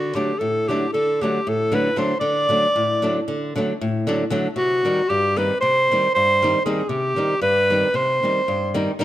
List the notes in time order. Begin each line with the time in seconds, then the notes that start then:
Already playing: D3 F#4
0.15 D3 F#3 A3 D4 G4
0.39 A2 A4
0.68 D3 F#3 A3 D4 G4
0.93 D3 A4
1.21 D3 F#3 A3 D4 G4
1.47 A2 A4
1.72 D3 F#3 A3 D4 B4
1.96 D3 F#3 A3 D4 C5
2.20 D3 D5
2.49 D3 F#3 A3 D4
2.76 A2
3.02 D3 F#3 A3 D4
3.28 D3
3.56 D3 F#3 A3 D4
3.81 A2
4.07 D3 F#3 A3 D4
4.30 D3 F#3 A3 D4
4.56 C3 F#4
4.85 D#3 G3 C4 D#4
5.09 G2 G4
5.36 D#3 G3 C4 D#4 B4
5.61 C3 C5
5.91 D#3 G3 C4 D#4
6.15 G2 C5
6.42 D#3 G3 C4 D#4
6.66 D#3 G3 C4 D#4 G#4
6.89 C3 G4
7.16 D#3 G3 C4 D#4
7.41 G2 B4
7.70 D#3 G3 C4 D#4
7.94 C3 C5
8.23 D#3 G3 C4 D#4
8.48 G2
8.74 D#3 G3 C4 D#4
8.99 D#3 G3 C4 D#4